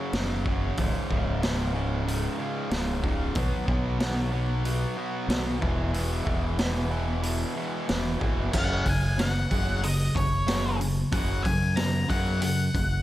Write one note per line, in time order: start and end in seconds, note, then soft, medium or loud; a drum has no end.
0.00 0.13 F#2 medium
0.00 0.13 C#3 medium
0.00 0.13 F#3 medium
0.13 0.71 F#1 medium
0.13 0.45 F#2 medium
0.13 0.46 C#3 medium
0.13 0.46 F#3 loud
0.13 snare loud
0.13 open hi-hat soft
0.46 0.77 F#2 medium
0.46 0.77 C#3 medium
0.46 0.77 F#3 medium
0.46 kick medium
0.77 0.93 C#1 medium
0.77 1.10 C#2 medium
0.77 1.10 G#2 medium
0.77 1.10 C#3 medium
0.77 kick loud
0.77 open hi-hat medium
1.11 2.27 C#1 medium
1.11 1.42 C#2 medium
1.11 1.42 G#2 medium
1.11 1.43 C#3 medium
1.11 kick medium
1.43 1.73 C#2 medium
1.43 1.73 G#2 medium
1.43 1.74 C#3 medium
1.43 snare loud
1.43 open hi-hat medium
1.74 2.05 C#2 medium
1.74 2.05 G#2 medium
1.74 2.06 C#3 medium
2.06 2.37 C#2 medium
2.06 2.38 G#2 loud
2.06 2.38 C#3 medium
2.06 open hi-hat soft
2.39 2.70 C#2 medium
2.39 2.70 G#2 medium
2.39 2.70 C#3 medium
2.71 3.30 C#1 medium
2.71 3.02 C#2 medium
2.71 3.03 G#2 loud
2.71 3.04 C#3 medium
2.71 snare loud
2.71 open hi-hat soft
3.04 3.34 C#2 medium
3.04 3.35 G#2 medium
3.04 3.35 C#3 medium
3.04 kick medium
3.35 3.51 B1 medium
3.35 3.66 B2 medium
3.35 3.66 F#3 loud
3.35 3.68 B3 medium
3.35 kick loud
3.35 open hi-hat soft
3.67 4.84 B1 medium
3.67 3.98 B2 medium
3.67 3.99 F#3 medium
3.67 4.00 B3 medium
3.67 kick medium
3.99 4.31 B2 medium
3.99 4.32 F#3 medium
3.99 4.33 B3 medium
3.99 snare loud
3.99 open hi-hat soft
4.32 4.63 B2 medium
4.32 4.64 F#3 medium
4.32 4.65 B3 medium
4.65 4.96 B2 medium
4.65 4.96 F#3 medium
4.65 4.97 B3 loud
4.65 open hi-hat soft
4.97 5.27 B2 medium
4.97 5.27 F#3 medium
4.97 5.28 B3 medium
5.28 5.58 B1 medium
5.28 5.60 B2 medium
5.28 5.60 F#3 medium
5.28 5.60 B3 medium
5.28 snare loud
5.28 open hi-hat soft
5.61 6.21 E1 medium
5.61 5.92 E2 medium
5.61 5.92 B2 loud
5.61 5.93 E3 loud
5.61 kick loud
5.93 6.23 E2 medium
5.93 6.24 B2 medium
5.93 6.24 E3 medium
5.93 open hi-hat soft
6.24 7.43 E1 medium
6.24 6.57 E2 medium
6.24 6.58 B2 medium
6.24 6.58 E3 medium
6.24 kick medium
6.58 6.89 E2 medium
6.58 6.90 B2 medium
6.58 6.90 E3 medium
6.58 snare loud
6.58 open hi-hat medium
6.91 7.21 E2 medium
6.91 7.22 B2 medium
6.91 7.22 E3 medium
7.22 7.54 E2 medium
7.22 7.55 B2 medium
7.22 7.55 E3 medium
7.22 open hi-hat soft
7.56 7.86 E2 medium
7.56 7.87 B2 medium
7.56 7.88 E3 medium
7.87 8.19 E1 medium
7.87 8.18 E2 medium
7.87 8.19 B2 medium
7.87 8.20 E3 medium
7.87 snare loud
7.87 open hi-hat soft
8.19 8.36 G#1 medium
8.19 8.51 E2 medium
8.19 8.52 B2 medium
8.19 8.52 E3 medium
8.19 kick medium
8.38 8.52 F#1 medium
8.53 8.83 F#1 medium
8.53 8.84 F#2 medium
8.53 8.84 C#3 medium
8.53 8.85 F#3 loud
8.53 kick loud
8.53 crash loud
8.58 8.89 F#5 medium
8.86 9.45 F#1 medium
8.86 9.16 F#2 medium
8.86 9.16 C#3 medium
8.86 9.18 G#5 loud
8.86 kick medium
8.86 open hi-hat soft
9.18 9.48 F#2 medium
9.18 9.48 C#3 medium
9.18 9.87 F#5 medium
9.18 snare loud
9.18 open hi-hat medium
9.51 10.10 F#1 medium
9.51 9.82 F#2 medium
9.51 9.82 C#3 medium
9.51 9.82 F#3 medium
9.51 kick medium
9.51 open hi-hat soft
9.83 10.13 F#2 medium
9.83 10.13 C#3 medium
9.83 10.14 D#5 medium
9.83 open hi-hat medium
10.15 11.03 F#1 medium
10.15 10.45 F#2 medium
10.15 10.45 C#3 medium
10.15 10.77 C#5 medium
10.15 kick medium
10.15 open hi-hat medium
10.47 10.78 F#2 medium
10.47 10.78 C#3 medium
10.47 10.79 F#3 medium
10.47 snare loud
10.47 open hi-hat medium
10.80 11.10 F#2 medium
10.80 11.10 C#3 medium
10.80 open hi-hat medium
11.12 11.42 F#1 medium
11.12 11.43 F#2 medium
11.12 11.43 C#3 medium
11.12 11.43 F#3 loud
11.12 11.43 F#5 medium
11.12 kick loud
11.12 open hi-hat medium
11.44 11.74 F#2 medium
11.44 12.04 F#2 medium
11.44 11.75 C#3 medium
11.44 11.78 G#5 medium
11.44 kick medium
11.44 open hi-hat medium
11.76 12.06 F#2 medium
11.76 12.07 C#3 medium
11.76 12.07 A#5 loud
11.76 snare loud
11.76 open hi-hat medium
12.08 12.40 F#2 medium
12.08 12.68 F#2 medium
12.08 12.40 C#3 medium
12.08 12.41 F#3 loud
12.08 12.41 F#5 medium
12.08 kick medium
12.08 open hi-hat medium
12.41 12.71 F#2 medium
12.41 12.72 C#3 medium
12.41 13.02 F#5 medium
12.41 open hi-hat medium
12.74 13.02 F#1 medium
12.74 13.02 F#2 medium
12.74 13.02 C#3 medium
12.74 kick medium
12.74 open hi-hat medium